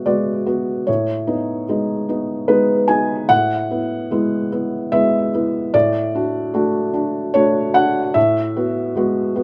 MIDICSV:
0, 0, Header, 1, 2, 480
1, 0, Start_track
1, 0, Tempo, 808625
1, 518, Time_signature, 3, 2, 24, 8
1, 5599, End_track
2, 0, Start_track
2, 0, Title_t, "Felt piano"
2, 0, Program_c, 0, 0
2, 0, Control_c, 0, 64, 127
2, 0, Note_on_c, 0, 45, 59
2, 0, Note_on_c, 0, 56, 44
2, 0, Note_on_c, 0, 59, 42
2, 0, Note_on_c, 0, 66, 44
2, 0, Note_on_c, 0, 76, 86
2, 34, Note_off_c, 0, 56, 0
2, 34, Note_on_c, 0, 56, 49
2, 34, Note_on_c, 0, 74, 76
2, 38, Note_off_c, 0, 59, 0
2, 38, Note_on_c, 0, 59, 47
2, 39, Note_off_c, 0, 66, 0
2, 39, Note_on_c, 0, 66, 56
2, 252, Note_off_c, 0, 56, 0
2, 254, Note_off_c, 0, 59, 0
2, 255, Note_off_c, 0, 66, 0
2, 274, Note_on_c, 0, 59, 43
2, 276, Note_on_c, 0, 66, 49
2, 493, Note_off_c, 0, 59, 0
2, 494, Note_off_c, 0, 66, 0
2, 515, Note_on_c, 0, 73, 78
2, 518, Note_off_c, 0, 74, 0
2, 523, Note_off_c, 0, 45, 0
2, 523, Note_on_c, 0, 45, 60
2, 529, Control_c, 0, 64, 0
2, 534, Note_off_c, 0, 76, 0
2, 622, Control_c, 0, 64, 127
2, 754, Note_off_c, 0, 45, 0
2, 755, Note_on_c, 0, 59, 42
2, 756, Note_on_c, 0, 63, 46
2, 974, Note_off_c, 0, 59, 0
2, 975, Note_off_c, 0, 63, 0
2, 1000, Note_on_c, 0, 56, 45
2, 1004, Note_on_c, 0, 59, 45
2, 1005, Note_on_c, 0, 63, 51
2, 1217, Note_off_c, 0, 56, 0
2, 1219, Note_off_c, 0, 59, 0
2, 1219, Note_off_c, 0, 63, 0
2, 1240, Note_on_c, 0, 59, 42
2, 1241, Note_on_c, 0, 63, 46
2, 1457, Note_off_c, 0, 59, 0
2, 1457, Note_off_c, 0, 63, 0
2, 1472, Note_on_c, 0, 71, 82
2, 1475, Note_on_c, 0, 56, 49
2, 1478, Note_on_c, 0, 59, 49
2, 1479, Note_off_c, 0, 73, 0
2, 1480, Note_on_c, 0, 63, 51
2, 1696, Note_off_c, 0, 56, 0
2, 1698, Note_off_c, 0, 59, 0
2, 1698, Note_off_c, 0, 63, 0
2, 1708, Note_on_c, 0, 80, 88
2, 1712, Note_on_c, 0, 59, 47
2, 1715, Note_on_c, 0, 63, 51
2, 1718, Note_off_c, 0, 71, 0
2, 1934, Note_off_c, 0, 59, 0
2, 1936, Note_off_c, 0, 63, 0
2, 1951, Note_on_c, 0, 78, 100
2, 1955, Note_on_c, 0, 45, 65
2, 1956, Note_off_c, 0, 80, 0
2, 1973, Control_c, 0, 64, 0
2, 2067, Control_c, 0, 64, 127
2, 2191, Note_off_c, 0, 45, 0
2, 2200, Note_on_c, 0, 59, 42
2, 2206, Note_on_c, 0, 64, 44
2, 2416, Note_off_c, 0, 59, 0
2, 2419, Note_off_c, 0, 64, 0
2, 2441, Note_on_c, 0, 56, 47
2, 2442, Note_on_c, 0, 59, 50
2, 2445, Note_on_c, 0, 64, 54
2, 2658, Note_off_c, 0, 56, 0
2, 2659, Note_off_c, 0, 59, 0
2, 2660, Note_off_c, 0, 64, 0
2, 2683, Note_on_c, 0, 64, 49
2, 2686, Note_on_c, 0, 59, 46
2, 2901, Note_off_c, 0, 64, 0
2, 2903, Note_off_c, 0, 59, 0
2, 2918, Note_off_c, 0, 78, 0
2, 2920, Note_on_c, 0, 76, 93
2, 2921, Note_on_c, 0, 56, 52
2, 2926, Note_on_c, 0, 59, 52
2, 2928, Note_on_c, 0, 64, 55
2, 3141, Note_off_c, 0, 56, 0
2, 3144, Note_off_c, 0, 59, 0
2, 3144, Note_off_c, 0, 64, 0
2, 3172, Note_on_c, 0, 64, 53
2, 3173, Note_on_c, 0, 59, 51
2, 3386, Note_off_c, 0, 59, 0
2, 3386, Note_off_c, 0, 64, 0
2, 3405, Note_off_c, 0, 76, 0
2, 3406, Note_on_c, 0, 45, 67
2, 3406, Note_on_c, 0, 74, 94
2, 3416, Control_c, 0, 64, 0
2, 3505, Control_c, 0, 64, 127
2, 3637, Note_off_c, 0, 45, 0
2, 3650, Note_on_c, 0, 62, 44
2, 3652, Note_on_c, 0, 66, 54
2, 3860, Note_off_c, 0, 62, 0
2, 3862, Note_off_c, 0, 66, 0
2, 3881, Note_on_c, 0, 62, 52
2, 3882, Note_on_c, 0, 57, 52
2, 3885, Note_on_c, 0, 66, 60
2, 4096, Note_off_c, 0, 62, 0
2, 4097, Note_off_c, 0, 57, 0
2, 4098, Note_off_c, 0, 66, 0
2, 4116, Note_on_c, 0, 62, 48
2, 4119, Note_on_c, 0, 66, 49
2, 4335, Note_off_c, 0, 62, 0
2, 4337, Note_off_c, 0, 66, 0
2, 4356, Note_on_c, 0, 73, 98
2, 4361, Note_off_c, 0, 74, 0
2, 4361, Note_on_c, 0, 57, 50
2, 4361, Note_on_c, 0, 62, 54
2, 4366, Note_on_c, 0, 66, 53
2, 4577, Note_off_c, 0, 57, 0
2, 4577, Note_off_c, 0, 62, 0
2, 4580, Note_off_c, 0, 66, 0
2, 4596, Note_on_c, 0, 78, 99
2, 4598, Note_off_c, 0, 73, 0
2, 4600, Note_on_c, 0, 62, 52
2, 4605, Note_on_c, 0, 66, 55
2, 4815, Note_off_c, 0, 62, 0
2, 4818, Note_off_c, 0, 66, 0
2, 4833, Note_on_c, 0, 76, 93
2, 4837, Note_off_c, 0, 78, 0
2, 4837, Note_on_c, 0, 45, 72
2, 4851, Control_c, 0, 64, 0
2, 4953, Control_c, 0, 64, 127
2, 5071, Note_off_c, 0, 45, 0
2, 5083, Note_on_c, 0, 59, 48
2, 5085, Note_on_c, 0, 66, 50
2, 5297, Note_off_c, 0, 59, 0
2, 5298, Note_off_c, 0, 66, 0
2, 5315, Note_on_c, 0, 56, 46
2, 5322, Note_on_c, 0, 59, 49
2, 5324, Note_on_c, 0, 66, 58
2, 5532, Note_off_c, 0, 56, 0
2, 5536, Note_off_c, 0, 59, 0
2, 5537, Note_off_c, 0, 66, 0
2, 5555, Note_on_c, 0, 59, 45
2, 5556, Note_on_c, 0, 66, 48
2, 5599, Note_off_c, 0, 59, 0
2, 5599, Note_off_c, 0, 66, 0
2, 5599, Note_off_c, 0, 76, 0
2, 5599, End_track
0, 0, End_of_file